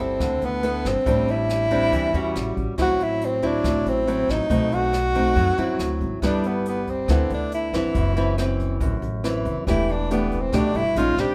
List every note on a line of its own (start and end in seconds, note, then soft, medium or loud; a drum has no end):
0.00 0.16 G1 medium
0.00 0.18 G3 soft
0.00 0.47 C4 medium
0.00 0.60 E4 medium
0.00 0.60 A4 medium
0.20 0.40 D2 medium
0.20 1.04 D3 medium
0.20 kick medium
0.20 cross-stick medium
0.20 closed hi-hat soft
0.41 0.81 D2 medium
0.41 closed hi-hat soft
0.45 0.89 B3 medium
0.63 0.91 B3 soft
0.63 0.91 E4 soft
0.63 0.91 A4 medium
0.63 closed hi-hat soft
0.85 0.95 G1 medium
0.85 1.32 C4 medium
0.85 kick soft
0.85 cross-stick medium
0.85 closed hi-hat soft
1.06 1.88 A1 loud
1.06 1.90 A2 soft
1.06 1.67 G3 soft
1.06 1.67 C4 soft
1.06 1.68 D4 medium
1.06 kick medium
1.06 closed hi-hat soft
1.28 2.58 E4 loud
1.28 closed hi-hat soft
1.49 cross-stick medium
1.49 closed hi-hat soft
1.71 2.10 G3 medium
1.71 2.10 C4 medium
1.71 2.11 D4 medium
1.71 kick soft
1.71 closed hi-hat soft
1.92 2.12 E2 medium
1.92 2.33 E3 medium
1.92 kick soft
1.92 closed hi-hat soft
2.14 2.34 E2 medium
2.14 2.75 G3 medium
2.14 2.75 C#4 medium
2.14 2.75 F#4 medium
2.14 closed hi-hat soft
2.35 2.55 A1 medium
2.35 cross-stick medium
2.35 closed hi-hat soft
2.57 2.67 A1 medium
2.57 kick soft
2.57 closed hi-hat soft
2.78 3.60 A1 medium
2.78 3.62 A2 medium
2.78 3.39 F#3 soft
2.78 3.39 C4 medium
2.78 3.40 E4 medium
2.78 3.05 F#4 medium
2.78 kick soft
2.78 cross-stick medium
2.78 closed hi-hat soft
3.00 3.26 E4 medium
3.00 closed hi-hat soft
3.21 3.47 C4 medium
3.21 closed hi-hat soft
3.42 4.04 F#3 medium
3.42 4.04 C4 medium
3.42 3.90 D4 medium
3.42 4.04 E4 medium
3.42 kick soft
3.42 closed hi-hat soft
3.64 3.84 A1 medium
3.64 4.48 A2 medium
3.64 kick medium
3.64 cross-stick medium
3.64 closed hi-hat soft
3.85 4.25 A1 medium
3.85 4.32 C4 medium
3.85 closed hi-hat soft
4.07 4.47 F#3 soft
4.07 4.47 C4 soft
4.07 4.47 E4 medium
4.07 closed hi-hat soft
4.28 4.38 A1 medium
4.28 4.75 D#4 loud
4.28 kick soft
4.28 cross-stick medium
4.28 closed hi-hat soft
4.50 5.32 B1 medium
4.50 5.34 B2 soft
4.50 4.93 A3 medium
4.50 4.93 C4 soft
4.50 4.93 D#4 medium
4.50 kick medium
4.50 closed hi-hat soft
4.72 6.02 F#4 loud
4.72 closed hi-hat soft
4.93 cross-stick medium
4.93 closed hi-hat soft
5.14 5.54 A3 soft
5.14 5.55 C4 medium
5.14 5.55 D#4 medium
5.14 kick soft
5.14 closed hi-hat soft
5.36 5.56 F#2 medium
5.36 5.57 F#3 medium
5.36 kick soft
5.36 closed hi-hat soft
5.58 5.78 F#2 medium
5.58 6.19 F#3 medium
5.58 6.19 C4 medium
5.58 6.19 E4 medium
5.58 closed hi-hat soft
5.79 5.99 D2 medium
5.79 cross-stick medium
5.79 closed hi-hat soft
6.01 6.11 G#1 medium
6.01 kick soft
6.01 closed hi-hat soft
6.22 7.04 G1 medium
6.22 7.07 G3 medium
6.22 6.80 B3 medium
6.22 6.81 E4 soft
6.22 6.81 A4 medium
6.22 kick medium
6.22 cross-stick medium
6.22 closed hi-hat soft
6.26 6.48 D4 medium
6.44 6.67 B3 medium
6.44 closed hi-hat soft
6.65 6.92 B3 medium
6.65 closed hi-hat soft
6.87 7.31 C4 medium
6.87 kick soft
6.87 closed hi-hat soft
7.08 7.28 D2 medium
7.08 7.93 D3 medium
7.08 7.70 B3 soft
7.08 7.70 E4 soft
7.08 7.70 A4 medium
7.08 kick medium
7.08 cross-stick medium
7.08 closed hi-hat soft
7.30 7.70 D2 medium
7.30 7.52 D4 medium
7.30 closed hi-hat soft
7.52 7.73 E4 medium
7.52 closed hi-hat soft
7.73 7.83 G1 medium
7.73 8.13 E3 medium
7.73 8.13 C4 medium
7.73 8.13 E4 medium
7.73 8.57 E4 medium
7.73 kick soft
7.73 cross-stick soft
7.73 closed hi-hat soft
7.95 8.77 F#1 medium
7.95 8.79 F#2 soft
7.95 kick medium
7.95 closed hi-hat soft
8.16 8.34 E3 medium
8.16 8.34 C4 medium
8.16 8.35 E4 medium
8.16 closed hi-hat soft
8.38 8.96 E3 medium
8.38 8.96 C4 soft
8.38 8.96 E4 medium
8.38 cross-stick medium
8.38 closed hi-hat soft
8.59 kick soft
8.59 closed hi-hat soft
8.80 9.00 A1 loud
8.80 9.65 F#2 medium
8.80 kick medium
8.80 closed hi-hat soft
9.02 9.42 A1 medium
9.02 closed hi-hat soft
9.24 9.63 E3 medium
9.24 9.64 C4 medium
9.24 9.64 E4 medium
9.24 cross-stick medium
9.24 closed hi-hat soft
9.45 9.55 F#1 medium
9.45 kick soft
9.45 closed hi-hat soft
9.67 10.49 E1 medium
9.67 10.51 E3 soft
9.67 9.95 A3 soft
9.67 9.95 D4 medium
9.67 9.93 E4 medium
9.67 9.95 G4 soft
9.67 kick medium
9.67 cross-stick medium
9.67 closed hi-hat soft
9.89 10.11 D4 medium
9.89 closed hi-hat soft
10.10 10.38 A3 soft
10.10 10.43 B3 medium
10.10 10.38 D4 medium
10.10 10.38 G4 medium
10.10 closed hi-hat soft
10.31 kick soft
10.31 closed hi-hat soft
10.41 10.56 C4 medium
10.52 10.73 B1 medium
10.52 10.94 B2 medium
10.52 10.82 A3 medium
10.52 10.82 D4 medium
10.52 10.78 D4 medium
10.52 10.82 G4 medium
10.52 kick medium
10.52 cross-stick medium
10.52 closed hi-hat soft
10.74 10.94 G1 medium
10.74 10.99 E4 medium
10.74 closed hi-hat soft
10.96 11.16 A#1 medium
10.96 11.14 G#3 medium
10.96 11.15 C#4 medium
10.96 11.15 D#4 medium
10.96 11.21 F4 medium
10.96 closed hi-hat soft
11.17 11.27 A#1 medium
11.17 11.35 G3 medium
11.17 11.35 C4 medium
11.17 11.35 D4 medium
11.17 11.35 G4 loud
11.17 kick soft
11.17 cross-stick soft
11.17 closed hi-hat soft